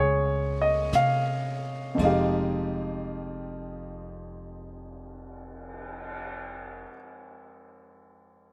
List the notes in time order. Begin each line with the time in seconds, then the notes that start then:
Already playing: C#2 G#3 A#3 C#4 F4 G#4 A#4 C#5
0.62 D#5
0.93 C3 F5, snare, hi-hat pedal
1.95 F1 F2 F3, kick
1.99 G#3, ride
2.03 D#4 G4 F5
2.72 cymbal swell